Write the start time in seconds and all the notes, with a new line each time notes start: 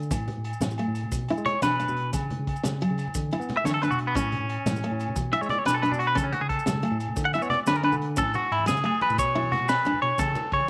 0.03 maracas
0.11 A2, muted nylon-string guitar stroke, kick, closed hi-hat, high conga, low conga, low agogo, maracas
0.20 low conga
0.28 closed hi-hat, low conga
0.35 A2, low conga
0.44 closed hi-hat, low agogo
0.53 maracas
0.61 A2 G#3, snare, closed hi-hat, high conga, low conga, maracas
0.71 maracas
0.78 A3, closed hi-hat, low agogo
0.88 A2
0.95 closed hi-hat, low agogo, maracas
1.03 low conga
1.12 B2, kick, closed hi-hat, high conga, maracas
1.21 low conga
1.28 E4, closed hi-hat, low agogo
1.38 G#3, maracas
1.46 C#5, closed hi-hat, low conga
1.62 B2 D4 B4, snare, closed hi-hat, high conga, low agogo, maracas
1.79 D4, closed hi-hat, low agogo, maracas
1.88 B2, low conga, maracas
1.97 closed hi-hat, low conga
2.12 C#3 C#4, kick, closed hi-hat, high conga, low conga, low agogo, maracas
2.23 low conga
2.30 closed hi-hat, low conga
2.39 C#3, low conga
2.47 kick, closed hi-hat, low agogo
2.56 maracas
2.64 C#3 G#3, snare, closed hi-hat, high conga, low conga, maracas
2.81 F#3, closed hi-hat, low agogo
2.91 C#3
2.98 closed hi-hat, low agogo, maracas
3.08 low conga
3.14 D3, kick, closed hi-hat, high conga, maracas
3.25 low conga
3.31 E4, closed hi-hat, low agogo
3.40 B3, maracas
3.49 snare, closed hi-hat, low conga
3.57 E5
3.64 D3 D4 C#5, snare, closed hi-hat, high conga, low agogo, maracas
3.74 A4
3.82 D4 B4, closed hi-hat, low agogo, maracas
3.90 B2 F#4, low conga, maracas
3.98 closed hi-hat, low conga
4.07 B3
4.15 A2 C#4, kick, closed hi-hat, high conga, low conga, low agogo, maracas
4.24 low conga
4.32 closed hi-hat, low conga
4.40 A2, low conga
4.49 closed hi-hat, low agogo
4.66 A2 G#3, snare, closed hi-hat, high conga, low conga, maracas
4.76 maracas
4.83 A3, closed hi-hat, low agogo
4.91 A2
4.99 closed hi-hat, low agogo, maracas
5.08 low conga
5.16 B2, kick, closed hi-hat, high conga, maracas
5.25 low conga
5.32 E4 E5, closed hi-hat, low agogo
5.41 G#3 C#5, maracas
5.49 D5, snare, closed hi-hat, low conga
5.59 C#5
5.65 B2 D4 B4, snare, closed hi-hat, high conga, low agogo, maracas
5.74 A4
5.82 D4 B4, closed hi-hat, low agogo, maracas
5.91 B2 D4, low conga, maracas
5.99 F#4, closed hi-hat, low conga
6.07 B4
6.15 C#3 C#4 A4, kick, closed hi-hat, high conga, low conga, low agogo, maracas
6.24 C#4, low conga
6.32 F#4, closed hi-hat, low conga
6.41 C#3 G#4
6.49 A4, kick, closed hi-hat, low agogo
6.59 low conga, maracas
6.66 C#3 G#3, snare, closed hi-hat, high conga, low conga, maracas
6.82 A3, closed hi-hat, low agogo
6.91 A2, low conga
7.00 closed hi-hat, low agogo, maracas
7.08 low conga
7.16 D3, kick, closed hi-hat, high conga, maracas
7.25 F#5, low conga
7.33 E4 E5, closed hi-hat, low conga, low agogo, maracas
7.42 B3 C#5, maracas
7.50 D5, snare, closed hi-hat, low conga
7.67 D3 D4 B4, snare, closed hi-hat, high conga, low conga, low agogo, maracas
7.75 A#4, low conga, maracas
7.83 D4 B4, closed hi-hat, low agogo
7.92 D3, low conga, maracas
8.01 closed hi-hat
8.16 A2 C#4 A4, kick, ride, high conga, low conga, low agogo, maracas
8.34 F#4, ride, low conga, maracas
8.51 G#2 E4, ride, low agogo
8.60 high conga
8.66 C#3 G#3 G#4, snare, ride, low conga, maracas
8.77 maracas
8.84 A3 G#4, ride, low agogo
9.01 B4, ride, high conga, low conga, low agogo
9.10 A2, low conga, maracas
9.18 B2 C#5, kick, ride, maracas
9.27 low conga
9.35 B2 E4, ride, low agogo
9.43 high conga
9.52 F#4, snare, ride, low conga
9.61 B2, low conga
9.68 B4, snare, ride, low agogo, maracas
9.85 D4, ride, high conga, low agogo, maracas
9.94 low conga
10.02 B2 C#5, ride
10.10 low conga
10.18 C#3 C#4 A4, kick, ride, high conga, low conga, low agogo, maracas
10.35 ride, low conga, maracas
10.52 C#3 C#5, kick, ride, low agogo
10.60 high conga